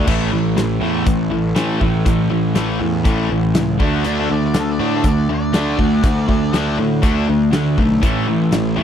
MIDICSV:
0, 0, Header, 1, 6, 480
1, 0, Start_track
1, 0, Tempo, 497100
1, 68, Time_signature, 4, 2, 24, 8
1, 8528, End_track
2, 0, Start_track
2, 0, Title_t, "Lead electric guitar"
2, 0, Program_c, 0, 29
2, 3919, Note_on_c, 0, 74, 74
2, 4028, Note_off_c, 0, 74, 0
2, 4057, Note_on_c, 0, 69, 78
2, 4157, Note_off_c, 0, 69, 0
2, 4172, Note_on_c, 0, 74, 85
2, 4275, Note_off_c, 0, 74, 0
2, 4310, Note_on_c, 0, 74, 72
2, 4404, Note_off_c, 0, 74, 0
2, 4432, Note_on_c, 0, 69, 80
2, 4525, Note_off_c, 0, 69, 0
2, 4550, Note_on_c, 0, 74, 78
2, 4644, Note_off_c, 0, 74, 0
2, 4660, Note_on_c, 0, 74, 76
2, 4759, Note_off_c, 0, 74, 0
2, 4794, Note_on_c, 0, 69, 72
2, 4886, Note_off_c, 0, 69, 0
2, 4906, Note_on_c, 0, 74, 77
2, 5119, Note_off_c, 0, 74, 0
2, 5150, Note_on_c, 0, 74, 86
2, 6530, Note_off_c, 0, 74, 0
2, 8528, End_track
3, 0, Start_track
3, 0, Title_t, "Overdriven electric guitar"
3, 0, Program_c, 1, 29
3, 1735, Note_on_c, 1, 57, 76
3, 2012, Note_off_c, 1, 57, 0
3, 2016, Note_on_c, 1, 57, 86
3, 3687, Note_off_c, 1, 57, 0
3, 5605, Note_on_c, 1, 62, 82
3, 7262, Note_off_c, 1, 62, 0
3, 7288, Note_on_c, 1, 62, 74
3, 7503, Note_off_c, 1, 62, 0
3, 8528, End_track
4, 0, Start_track
4, 0, Title_t, "Distorted electric guitar"
4, 0, Program_c, 2, 30
4, 65, Note_on_c, 2, 45, 76
4, 73, Note_on_c, 2, 52, 84
4, 80, Note_on_c, 2, 57, 96
4, 291, Note_off_c, 2, 45, 0
4, 296, Note_off_c, 2, 52, 0
4, 299, Note_off_c, 2, 57, 0
4, 303, Note_on_c, 2, 45, 66
4, 312, Note_on_c, 2, 52, 72
4, 521, Note_off_c, 2, 45, 0
4, 525, Note_off_c, 2, 52, 0
4, 550, Note_on_c, 2, 45, 73
4, 554, Note_on_c, 2, 52, 84
4, 764, Note_off_c, 2, 45, 0
4, 766, Note_off_c, 2, 52, 0
4, 784, Note_on_c, 2, 45, 87
4, 797, Note_on_c, 2, 52, 87
4, 798, Note_on_c, 2, 57, 91
4, 1010, Note_off_c, 2, 45, 0
4, 1016, Note_off_c, 2, 52, 0
4, 1017, Note_off_c, 2, 57, 0
4, 1026, Note_on_c, 2, 45, 68
4, 1027, Note_on_c, 2, 52, 75
4, 1241, Note_off_c, 2, 45, 0
4, 1242, Note_off_c, 2, 52, 0
4, 1266, Note_on_c, 2, 45, 62
4, 1267, Note_on_c, 2, 52, 71
4, 1481, Note_off_c, 2, 45, 0
4, 1481, Note_off_c, 2, 52, 0
4, 1500, Note_on_c, 2, 45, 79
4, 1505, Note_on_c, 2, 52, 79
4, 1508, Note_on_c, 2, 57, 86
4, 1727, Note_off_c, 2, 45, 0
4, 1730, Note_off_c, 2, 52, 0
4, 1731, Note_off_c, 2, 57, 0
4, 1748, Note_on_c, 2, 45, 57
4, 1751, Note_on_c, 2, 52, 74
4, 1962, Note_off_c, 2, 45, 0
4, 1963, Note_off_c, 2, 52, 0
4, 1984, Note_on_c, 2, 45, 68
4, 1987, Note_on_c, 2, 52, 68
4, 2200, Note_off_c, 2, 45, 0
4, 2201, Note_off_c, 2, 52, 0
4, 2221, Note_on_c, 2, 45, 55
4, 2223, Note_on_c, 2, 52, 70
4, 2438, Note_off_c, 2, 45, 0
4, 2439, Note_off_c, 2, 52, 0
4, 2465, Note_on_c, 2, 45, 101
4, 2469, Note_on_c, 2, 52, 87
4, 2475, Note_on_c, 2, 57, 111
4, 2690, Note_off_c, 2, 45, 0
4, 2692, Note_off_c, 2, 52, 0
4, 2695, Note_off_c, 2, 57, 0
4, 2710, Note_on_c, 2, 45, 78
4, 2711, Note_on_c, 2, 52, 76
4, 2923, Note_off_c, 2, 45, 0
4, 2923, Note_off_c, 2, 52, 0
4, 2940, Note_on_c, 2, 45, 94
4, 2946, Note_on_c, 2, 52, 88
4, 2949, Note_on_c, 2, 57, 106
4, 3167, Note_off_c, 2, 45, 0
4, 3170, Note_off_c, 2, 52, 0
4, 3172, Note_off_c, 2, 57, 0
4, 3191, Note_on_c, 2, 45, 60
4, 3193, Note_on_c, 2, 52, 67
4, 3403, Note_off_c, 2, 45, 0
4, 3404, Note_off_c, 2, 52, 0
4, 3426, Note_on_c, 2, 45, 69
4, 3427, Note_on_c, 2, 52, 77
4, 3641, Note_off_c, 2, 45, 0
4, 3641, Note_off_c, 2, 52, 0
4, 3666, Note_on_c, 2, 50, 82
4, 3670, Note_on_c, 2, 57, 87
4, 3677, Note_on_c, 2, 62, 96
4, 3890, Note_off_c, 2, 50, 0
4, 3892, Note_off_c, 2, 57, 0
4, 3896, Note_off_c, 2, 62, 0
4, 3909, Note_on_c, 2, 50, 79
4, 3914, Note_on_c, 2, 57, 73
4, 3924, Note_on_c, 2, 62, 88
4, 4132, Note_off_c, 2, 50, 0
4, 4134, Note_off_c, 2, 57, 0
4, 4140, Note_off_c, 2, 62, 0
4, 4158, Note_on_c, 2, 57, 75
4, 4159, Note_on_c, 2, 50, 68
4, 4367, Note_off_c, 2, 50, 0
4, 4367, Note_off_c, 2, 57, 0
4, 4386, Note_on_c, 2, 50, 71
4, 4389, Note_on_c, 2, 57, 88
4, 4601, Note_off_c, 2, 50, 0
4, 4603, Note_off_c, 2, 57, 0
4, 4630, Note_on_c, 2, 50, 88
4, 4634, Note_on_c, 2, 57, 86
4, 4645, Note_on_c, 2, 62, 104
4, 4853, Note_off_c, 2, 50, 0
4, 4855, Note_off_c, 2, 57, 0
4, 4860, Note_off_c, 2, 62, 0
4, 4876, Note_on_c, 2, 50, 72
4, 4879, Note_on_c, 2, 57, 74
4, 5086, Note_off_c, 2, 50, 0
4, 5088, Note_off_c, 2, 57, 0
4, 5111, Note_on_c, 2, 50, 60
4, 5115, Note_on_c, 2, 57, 66
4, 5324, Note_off_c, 2, 50, 0
4, 5326, Note_off_c, 2, 57, 0
4, 5340, Note_on_c, 2, 50, 83
4, 5346, Note_on_c, 2, 57, 86
4, 5355, Note_on_c, 2, 62, 89
4, 5568, Note_off_c, 2, 50, 0
4, 5571, Note_off_c, 2, 57, 0
4, 5575, Note_off_c, 2, 62, 0
4, 5585, Note_on_c, 2, 50, 66
4, 5587, Note_on_c, 2, 57, 69
4, 5801, Note_off_c, 2, 50, 0
4, 5802, Note_off_c, 2, 57, 0
4, 5821, Note_on_c, 2, 50, 58
4, 5831, Note_on_c, 2, 57, 77
4, 6039, Note_off_c, 2, 50, 0
4, 6044, Note_off_c, 2, 57, 0
4, 6062, Note_on_c, 2, 50, 56
4, 6065, Note_on_c, 2, 57, 69
4, 6280, Note_off_c, 2, 50, 0
4, 6281, Note_off_c, 2, 57, 0
4, 6308, Note_on_c, 2, 50, 95
4, 6316, Note_on_c, 2, 57, 96
4, 6323, Note_on_c, 2, 62, 111
4, 6533, Note_off_c, 2, 50, 0
4, 6537, Note_off_c, 2, 57, 0
4, 6540, Note_off_c, 2, 62, 0
4, 6551, Note_on_c, 2, 50, 73
4, 6553, Note_on_c, 2, 57, 71
4, 6764, Note_off_c, 2, 50, 0
4, 6765, Note_off_c, 2, 57, 0
4, 6779, Note_on_c, 2, 50, 85
4, 6783, Note_on_c, 2, 57, 91
4, 6792, Note_on_c, 2, 62, 92
4, 7008, Note_off_c, 2, 50, 0
4, 7010, Note_off_c, 2, 57, 0
4, 7015, Note_off_c, 2, 62, 0
4, 7027, Note_on_c, 2, 50, 62
4, 7028, Note_on_c, 2, 57, 69
4, 7243, Note_off_c, 2, 50, 0
4, 7243, Note_off_c, 2, 57, 0
4, 7268, Note_on_c, 2, 50, 68
4, 7270, Note_on_c, 2, 57, 71
4, 7483, Note_off_c, 2, 50, 0
4, 7485, Note_off_c, 2, 57, 0
4, 7513, Note_on_c, 2, 50, 56
4, 7513, Note_on_c, 2, 57, 68
4, 7726, Note_off_c, 2, 50, 0
4, 7726, Note_off_c, 2, 57, 0
4, 7742, Note_on_c, 2, 45, 77
4, 7749, Note_on_c, 2, 52, 86
4, 7754, Note_on_c, 2, 57, 76
4, 7970, Note_off_c, 2, 45, 0
4, 7974, Note_off_c, 2, 52, 0
4, 7977, Note_off_c, 2, 57, 0
4, 7992, Note_on_c, 2, 45, 66
4, 7996, Note_on_c, 2, 52, 68
4, 8206, Note_off_c, 2, 45, 0
4, 8208, Note_off_c, 2, 52, 0
4, 8230, Note_on_c, 2, 45, 88
4, 8235, Note_on_c, 2, 52, 84
4, 8445, Note_off_c, 2, 45, 0
4, 8448, Note_off_c, 2, 52, 0
4, 8458, Note_on_c, 2, 45, 89
4, 8467, Note_on_c, 2, 52, 89
4, 8472, Note_on_c, 2, 57, 90
4, 8528, Note_off_c, 2, 45, 0
4, 8528, Note_off_c, 2, 52, 0
4, 8528, Note_off_c, 2, 57, 0
4, 8528, End_track
5, 0, Start_track
5, 0, Title_t, "Picked electric bass"
5, 0, Program_c, 3, 34
5, 74, Note_on_c, 3, 33, 78
5, 298, Note_off_c, 3, 33, 0
5, 312, Note_on_c, 3, 33, 87
5, 536, Note_off_c, 3, 33, 0
5, 555, Note_on_c, 3, 33, 88
5, 777, Note_off_c, 3, 33, 0
5, 787, Note_on_c, 3, 40, 74
5, 1013, Note_off_c, 3, 40, 0
5, 1033, Note_on_c, 3, 33, 88
5, 1256, Note_off_c, 3, 33, 0
5, 1274, Note_on_c, 3, 33, 81
5, 1496, Note_off_c, 3, 33, 0
5, 1512, Note_on_c, 3, 33, 84
5, 1735, Note_off_c, 3, 33, 0
5, 1751, Note_on_c, 3, 33, 80
5, 1974, Note_off_c, 3, 33, 0
5, 1994, Note_on_c, 3, 33, 84
5, 2216, Note_off_c, 3, 33, 0
5, 2230, Note_on_c, 3, 33, 78
5, 2454, Note_off_c, 3, 33, 0
5, 2474, Note_on_c, 3, 33, 85
5, 2696, Note_off_c, 3, 33, 0
5, 2709, Note_on_c, 3, 40, 82
5, 2933, Note_off_c, 3, 40, 0
5, 2951, Note_on_c, 3, 33, 86
5, 3174, Note_off_c, 3, 33, 0
5, 3195, Note_on_c, 3, 33, 80
5, 3416, Note_off_c, 3, 33, 0
5, 3439, Note_on_c, 3, 37, 86
5, 3659, Note_off_c, 3, 37, 0
5, 3672, Note_on_c, 3, 38, 82
5, 3895, Note_off_c, 3, 38, 0
5, 3922, Note_on_c, 3, 38, 91
5, 4140, Note_off_c, 3, 38, 0
5, 4153, Note_on_c, 3, 38, 78
5, 4376, Note_off_c, 3, 38, 0
5, 4395, Note_on_c, 3, 38, 94
5, 4617, Note_off_c, 3, 38, 0
5, 4635, Note_on_c, 3, 45, 84
5, 4857, Note_off_c, 3, 45, 0
5, 4866, Note_on_c, 3, 38, 83
5, 5092, Note_off_c, 3, 38, 0
5, 5114, Note_on_c, 3, 38, 72
5, 5336, Note_off_c, 3, 38, 0
5, 5346, Note_on_c, 3, 38, 83
5, 5573, Note_off_c, 3, 38, 0
5, 5587, Note_on_c, 3, 38, 88
5, 5813, Note_off_c, 3, 38, 0
5, 5830, Note_on_c, 3, 38, 79
5, 6055, Note_off_c, 3, 38, 0
5, 6069, Note_on_c, 3, 38, 75
5, 6294, Note_off_c, 3, 38, 0
5, 6308, Note_on_c, 3, 38, 84
5, 6534, Note_off_c, 3, 38, 0
5, 6551, Note_on_c, 3, 45, 74
5, 6776, Note_off_c, 3, 45, 0
5, 6790, Note_on_c, 3, 38, 89
5, 7015, Note_off_c, 3, 38, 0
5, 7039, Note_on_c, 3, 38, 79
5, 7260, Note_off_c, 3, 38, 0
5, 7271, Note_on_c, 3, 38, 90
5, 7496, Note_off_c, 3, 38, 0
5, 7512, Note_on_c, 3, 35, 78
5, 7737, Note_off_c, 3, 35, 0
5, 7755, Note_on_c, 3, 33, 74
5, 7978, Note_off_c, 3, 33, 0
5, 7992, Note_on_c, 3, 33, 87
5, 8217, Note_off_c, 3, 33, 0
5, 8240, Note_on_c, 3, 33, 93
5, 8461, Note_off_c, 3, 33, 0
5, 8474, Note_on_c, 3, 40, 76
5, 8528, Note_off_c, 3, 40, 0
5, 8528, End_track
6, 0, Start_track
6, 0, Title_t, "Drums"
6, 72, Note_on_c, 9, 36, 99
6, 72, Note_on_c, 9, 49, 99
6, 169, Note_off_c, 9, 36, 0
6, 169, Note_off_c, 9, 49, 0
6, 556, Note_on_c, 9, 42, 57
6, 559, Note_on_c, 9, 38, 106
6, 652, Note_off_c, 9, 42, 0
6, 655, Note_off_c, 9, 38, 0
6, 1028, Note_on_c, 9, 42, 59
6, 1029, Note_on_c, 9, 36, 105
6, 1124, Note_off_c, 9, 42, 0
6, 1126, Note_off_c, 9, 36, 0
6, 1506, Note_on_c, 9, 42, 56
6, 1509, Note_on_c, 9, 38, 117
6, 1603, Note_off_c, 9, 42, 0
6, 1606, Note_off_c, 9, 38, 0
6, 1749, Note_on_c, 9, 36, 79
6, 1845, Note_off_c, 9, 36, 0
6, 1989, Note_on_c, 9, 36, 105
6, 1992, Note_on_c, 9, 42, 60
6, 2086, Note_off_c, 9, 36, 0
6, 2088, Note_off_c, 9, 42, 0
6, 2466, Note_on_c, 9, 42, 56
6, 2469, Note_on_c, 9, 38, 96
6, 2562, Note_off_c, 9, 42, 0
6, 2565, Note_off_c, 9, 38, 0
6, 2947, Note_on_c, 9, 36, 106
6, 2948, Note_on_c, 9, 42, 54
6, 3044, Note_off_c, 9, 36, 0
6, 3045, Note_off_c, 9, 42, 0
6, 3425, Note_on_c, 9, 42, 64
6, 3428, Note_on_c, 9, 38, 116
6, 3522, Note_off_c, 9, 42, 0
6, 3525, Note_off_c, 9, 38, 0
6, 3668, Note_on_c, 9, 36, 97
6, 3765, Note_off_c, 9, 36, 0
6, 3905, Note_on_c, 9, 42, 60
6, 4001, Note_off_c, 9, 42, 0
6, 4386, Note_on_c, 9, 42, 58
6, 4389, Note_on_c, 9, 38, 106
6, 4483, Note_off_c, 9, 42, 0
6, 4486, Note_off_c, 9, 38, 0
6, 4866, Note_on_c, 9, 42, 63
6, 4868, Note_on_c, 9, 36, 93
6, 4962, Note_off_c, 9, 42, 0
6, 4965, Note_off_c, 9, 36, 0
6, 5348, Note_on_c, 9, 42, 62
6, 5351, Note_on_c, 9, 38, 115
6, 5445, Note_off_c, 9, 42, 0
6, 5447, Note_off_c, 9, 38, 0
6, 5589, Note_on_c, 9, 36, 74
6, 5685, Note_off_c, 9, 36, 0
6, 5828, Note_on_c, 9, 36, 107
6, 5828, Note_on_c, 9, 42, 63
6, 5924, Note_off_c, 9, 42, 0
6, 5925, Note_off_c, 9, 36, 0
6, 6070, Note_on_c, 9, 36, 76
6, 6166, Note_off_c, 9, 36, 0
6, 6313, Note_on_c, 9, 42, 54
6, 6316, Note_on_c, 9, 38, 97
6, 6410, Note_off_c, 9, 42, 0
6, 6413, Note_off_c, 9, 38, 0
6, 6787, Note_on_c, 9, 42, 53
6, 6789, Note_on_c, 9, 36, 92
6, 6883, Note_off_c, 9, 42, 0
6, 6885, Note_off_c, 9, 36, 0
6, 7269, Note_on_c, 9, 42, 52
6, 7272, Note_on_c, 9, 38, 109
6, 7366, Note_off_c, 9, 42, 0
6, 7368, Note_off_c, 9, 38, 0
6, 7511, Note_on_c, 9, 36, 78
6, 7607, Note_off_c, 9, 36, 0
6, 7751, Note_on_c, 9, 36, 103
6, 7751, Note_on_c, 9, 42, 60
6, 7848, Note_off_c, 9, 36, 0
6, 7848, Note_off_c, 9, 42, 0
6, 8229, Note_on_c, 9, 42, 59
6, 8232, Note_on_c, 9, 38, 102
6, 8326, Note_off_c, 9, 42, 0
6, 8329, Note_off_c, 9, 38, 0
6, 8528, End_track
0, 0, End_of_file